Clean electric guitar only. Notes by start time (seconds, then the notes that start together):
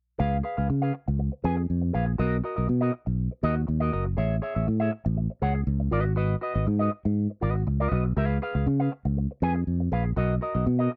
0.18 G#4 B4 F5
0.43 G#4 B4 F5
0.57 G#4 B4 F5
0.69 muted clean electric guitar stroke
0.82 G#4 B4 F5
0.94 muted clean electric guitar stroke
1.08 muted clean electric guitar stroke
1.19 muted clean electric guitar stroke
1.32 muted clean electric guitar stroke
1.44 G#4 B4 G#5
1.57 muted clean electric guitar stroke
1.82 muted clean electric guitar stroke
1.93 G#4 B4 F5
2.06 muted clean electric guitar stroke
2.18 F#4 A#4 D#5
2.44 F#4 A#4 D#5
2.56 F#4 A#4 D#5
2.68 muted clean electric guitar stroke
2.81 F#4 A#4 D#5
2.93 muted clean electric guitar stroke
3.06 muted clean electric guitar stroke
3.31 muted clean electric guitar stroke
3.43 F#4 A#4 D#5
3.56 muted clean electric guitar stroke
3.67 muted clean electric guitar stroke
3.80 F#4 A#4 D#5
3.92 F#4 A#4 D#5
4.05 muted clean electric guitar stroke
4.17 G#4 C#5 E5
4.42 G#4 C#5 E5
4.55 G#4 C#5 E5
4.67 muted clean electric guitar stroke
4.80 G#4 C#5 E5
4.92 muted clean electric guitar stroke
5.05 muted clean electric guitar stroke
5.17 muted clean electric guitar stroke
5.30 muted clean electric guitar stroke
5.42 G#4 C#5 F#5
5.55 muted clean electric guitar stroke
5.80 muted clean electric guitar stroke
5.91 F#4 B4 D#5
6.05 muted clean electric guitar stroke
6.16 F#4 B4 D#5
6.41 F#4 B4 D#5
6.54 F#4 B4 D#5
6.67 muted clean electric guitar stroke
6.79 F#4 B4 D#5
6.92 muted clean electric guitar stroke
7.05 muted clean electric guitar stroke
7.30 muted clean electric guitar stroke
7.41 F#4 B4 D#5
7.55 muted clean electric guitar stroke
7.67 muted clean electric guitar stroke
7.80 F#4 B4 D#5
7.91 F#4 B4 D#5
8.17 G#4 B4 F5
8.42 G#4 B4 F5
8.55 G#4 B4 F5
8.67 muted clean electric guitar stroke
8.80 G#4 B4 F5
8.92 muted clean electric guitar stroke
9.05 muted clean electric guitar stroke
9.17 muted clean electric guitar stroke
9.31 muted clean electric guitar stroke
9.42 G#4 B4 G#5
9.55 muted clean electric guitar stroke
9.80 muted clean electric guitar stroke
9.92 G#4 B4 F5
10.05 muted clean electric guitar stroke
10.16 F#4 A#4 D#5
10.41 F#4 A#4 D#5
10.54 F#4 A#4 D#5
10.66 muted clean electric guitar stroke
10.79 F#4 A#4 D#5
10.91 muted clean electric guitar stroke